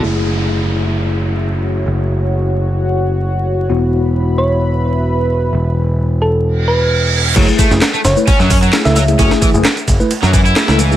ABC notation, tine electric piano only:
X:1
M:4/4
L:1/16
Q:1/4=131
K:F#m
V:1 name="Tine electric piano"
[A,EG]16- | [A,EG]16 | [B,EF]16- | [B,EF]16 |
[A,EG]3 [A,EG] z3 [A,EB] z4 [A,EG] [A,EA] z [A,EG] | [A,EG]3 [A,EG] z3 [A,EB] z4 [A,EG] [A,EA] z [A,EG] |]